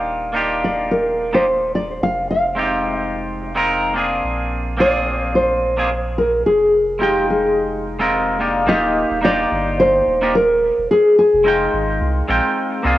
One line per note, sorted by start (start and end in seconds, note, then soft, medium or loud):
0.00 1.99 D#1 medium
0.00 0.31 A#3 medium
0.00 0.31 D4 medium
0.00 0.32 D#4 medium
0.00 0.32 F4 medium
0.00 0.33 G4 medium
0.33 1.29 A#3 medium
0.33 1.29 D4 medium
0.33 1.30 D#4 medium
0.33 1.30 F4 medium
0.33 1.31 G4 medium
0.64 0.92 D5 medium
0.91 1.35 A#4 medium
1.33 1.44 A#3 medium
1.33 1.45 D4 medium
1.33 1.45 D#4 medium
1.33 1.45 F4 medium
1.33 1.45 G4 medium
1.33 1.71 C5 medium
1.75 2.03 D5 medium
2.01 4.21 F1 medium
2.01 2.28 F5 loud
2.31 3.92 F5 medium
2.55 3.51 G#3 medium
2.55 3.52 C4 medium
2.55 3.52 D#4 medium
2.55 3.53 F4 medium
2.59 3.53 G4 medium
3.55 3.92 G#3 medium
3.55 3.93 C4 medium
3.55 3.93 D#4 medium
3.55 3.93 F4 medium
3.55 3.94 A#4 medium
3.94 4.75 A#3 medium
3.94 4.76 C4 medium
3.94 4.76 D4 medium
3.94 4.77 F4 medium
3.94 4.77 G#4 medium
4.24 6.43 A#1 medium
4.77 5.73 A#3 medium
4.77 5.74 C4 medium
4.77 5.74 D4 medium
4.77 5.75 F4 medium
4.77 5.75 G#4 medium
4.77 5.35 D5 loud
5.35 6.21 C5 loud
5.77 5.89 A#3 medium
5.77 5.89 C4 medium
5.77 5.89 D4 medium
5.77 5.89 F4 medium
5.77 5.90 G#4 medium
6.18 6.46 A#4 medium
6.45 8.65 F1 medium
6.45 7.01 G#4 medium
6.99 7.95 G#3 medium
6.99 7.02 C4 medium
6.99 7.96 D#4 medium
6.99 7.97 F4 medium
6.99 7.27 G4 medium
6.99 7.97 G5 medium
7.30 7.81 G#4 medium
7.99 8.37 G#3 medium
7.99 8.37 C4 medium
7.99 8.37 D#4 medium
7.99 8.37 F4 medium
7.99 8.38 A#4 loud
8.39 8.65 A#3 medium
8.39 8.67 D4 medium
8.39 8.67 D#4 medium
8.39 8.67 F4 medium
8.39 8.68 G4 medium
8.67 9.04 D#1 loud
8.67 9.18 A#3 medium
8.67 9.19 D#4 medium
8.67 9.19 F4 medium
8.67 9.19 G4 loud
8.67 9.24 D#5 loud
9.10 9.45 D#1 loud
9.21 10.18 A#3 medium
9.21 10.18 D4 medium
9.21 10.19 D#4 medium
9.21 10.19 F4 medium
9.21 10.20 G4 medium
9.21 9.79 D5 loud
9.51 10.01 G1 medium
9.80 10.37 C5 loud
10.06 10.71 D#1 loud
10.21 10.33 A#3 medium
10.21 10.33 D4 medium
10.21 10.33 D#4 medium
10.21 10.34 F4 medium
10.21 10.34 G4 medium
10.35 10.90 A#4 loud
10.78 10.87 D#1 medium
10.91 11.17 G#4 loud
11.19 12.81 G#4 medium
11.33 11.68 F1 loud
11.44 12.26 G#3 medium
11.44 11.47 C4 medium
11.44 12.27 D#4 medium
11.44 12.27 F4 medium
11.44 12.28 G5 medium
11.73 12.00 G#1 medium
12.01 12.22 C2 loud
12.28 12.40 A#1 medium
12.28 12.81 G#3 medium
12.28 12.81 C4 medium
12.28 12.82 D#4 medium
12.28 12.82 F4 medium
12.28 12.82 G5 medium
12.83 12.96 C2 medium
12.83 12.98 A#3 medium
12.83 12.98 C4 medium
12.83 12.98 D4 medium
12.83 12.98 F4 medium
12.83 12.98 G#4 medium